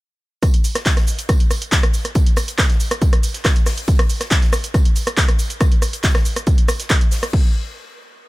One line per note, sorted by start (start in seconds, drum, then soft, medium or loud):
0.43 kick loud
0.43 cross-stick medium
0.43 closed hi-hat medium
0.43 tambourine medium
0.43 shaker soft
0.54 closed hi-hat medium
0.64 open hi-hat loud
0.64 tambourine medium
0.64 shaker medium
0.75 cross-stick medium
0.75 snare soft
0.75 closed hi-hat medium
0.75 shaker soft
0.86 kick loud
0.86 snare loud
0.86 clap loud
0.86 closed hi-hat medium
0.86 tambourine medium
0.86 shaker soft
0.97 cross-stick medium
0.97 snare medium
0.97 closed hi-hat medium
1.07 open hi-hat medium
1.07 tambourine medium
1.07 shaker medium
1.19 closed hi-hat soft
1.19 closed hi-hat medium
1.19 shaker soft
1.29 kick loud
1.29 cross-stick medium
1.29 closed hi-hat medium
1.29 tambourine medium
1.29 shaker soft
1.40 closed hi-hat medium
1.51 cross-stick medium
1.51 open hi-hat loud
1.51 tambourine medium
1.51 shaker medium
1.62 closed hi-hat medium
1.62 shaker soft
1.72 kick loud
1.72 snare loud
1.72 clap loud
1.72 closed hi-hat medium
1.72 tambourine medium
1.72 shaker soft
1.83 cross-stick medium
1.83 closed hi-hat medium
1.94 open hi-hat medium
1.94 tambourine medium
1.94 shaker medium
2.05 cross-stick medium
2.05 closed hi-hat medium
2.05 shaker soft
2.15 kick loud
2.15 closed hi-hat medium
2.15 tambourine medium
2.15 shaker soft
2.26 closed hi-hat medium
2.36 cross-stick medium
2.36 open hi-hat loud
2.36 tambourine medium
2.36 shaker medium
2.48 closed hi-hat soft
2.48 closed hi-hat medium
2.48 shaker soft
2.58 kick loud
2.58 cross-stick medium
2.58 snare loud
2.58 clap loud
2.58 closed hi-hat medium
2.58 tambourine loud
2.58 shaker soft
2.70 snare soft
2.70 closed hi-hat medium
2.80 open hi-hat loud
2.80 tambourine medium
2.80 shaker medium
2.91 cross-stick loud
2.91 closed hi-hat medium
2.91 shaker soft
3.01 kick loud
3.01 closed hi-hat medium
3.01 tambourine medium
3.01 shaker soft
3.13 cross-stick medium
3.13 closed hi-hat medium
3.23 open hi-hat loud
3.23 tambourine medium
3.23 shaker medium
3.34 snare soft
3.34 closed hi-hat medium
3.34 shaker soft
3.45 kick loud
3.45 cross-stick medium
3.45 snare loud
3.45 clap loud
3.45 closed hi-hat medium
3.45 tambourine medium
3.45 shaker soft
3.56 closed hi-hat medium
3.66 cross-stick medium
3.66 snare medium
3.66 open hi-hat medium
3.66 open hi-hat loud
3.66 shaker medium
3.78 closed hi-hat medium
3.78 shaker soft
3.87 kick loud
3.87 closed hi-hat medium
3.87 tambourine medium
3.87 shaker soft
3.99 cross-stick loud
3.99 closed hi-hat medium
4.09 open hi-hat loud
4.09 tambourine medium
4.09 shaker medium
4.20 cross-stick medium
4.20 snare soft
4.20 closed hi-hat medium
4.20 shaker soft
4.31 kick loud
4.31 snare loud
4.31 clap loud
4.31 closed hi-hat medium
4.31 tambourine medium
4.31 shaker soft
4.42 snare medium
4.42 closed hi-hat medium
4.53 cross-stick loud
4.53 open hi-hat loud
4.53 tambourine medium
4.53 shaker medium
4.64 closed hi-hat soft
4.64 closed hi-hat medium
4.64 shaker soft
4.74 kick loud
4.74 cross-stick medium
4.74 closed hi-hat medium
4.74 tambourine medium
4.74 shaker soft
4.85 closed hi-hat medium
4.96 open hi-hat loud
4.96 tambourine medium
4.96 shaker medium
5.07 cross-stick loud
5.07 closed hi-hat medium
5.07 shaker soft
5.17 kick loud
5.17 snare loud
5.17 clap loud
5.17 closed hi-hat medium
5.17 tambourine medium
5.17 shaker soft
5.29 cross-stick medium
5.29 closed hi-hat medium
5.39 open hi-hat loud
5.39 tambourine medium
5.39 shaker medium
5.50 closed hi-hat medium
5.50 shaker soft
5.61 kick loud
5.61 cross-stick loud
5.61 closed hi-hat medium
5.61 tambourine medium
5.61 shaker soft
5.72 closed hi-hat medium
5.82 cross-stick medium
5.82 open hi-hat loud
5.82 tambourine medium
5.82 shaker medium
5.93 closed hi-hat medium
5.93 closed hi-hat soft
5.93 shaker soft
6.03 kick loud
6.03 snare loud
6.03 clap loud
6.03 closed hi-hat medium
6.03 tambourine medium
6.03 shaker soft
6.15 cross-stick medium
6.15 snare soft
6.15 closed hi-hat medium
6.25 open hi-hat loud
6.25 tambourine medium
6.25 shaker medium
6.36 cross-stick medium
6.36 closed hi-hat medium
6.36 shaker soft
6.47 kick loud
6.47 closed hi-hat medium
6.47 tambourine medium
6.47 shaker soft
6.58 closed hi-hat medium
6.68 cross-stick loud
6.68 open hi-hat loud
6.68 tambourine medium
6.68 shaker medium
6.80 snare soft
6.80 closed hi-hat medium
6.80 shaker soft
6.89 kick loud
6.89 cross-stick medium
6.89 snare loud
6.89 clap loud
6.89 closed hi-hat medium
6.89 tambourine loud
6.89 shaker soft
7.01 closed hi-hat medium
7.11 snare medium
7.11 open hi-hat medium
7.11 open hi-hat loud
7.11 shaker medium
7.22 cross-stick medium
7.22 snare soft
7.22 closed hi-hat medium
7.22 shaker soft
7.33 kick loud
7.33 crash medium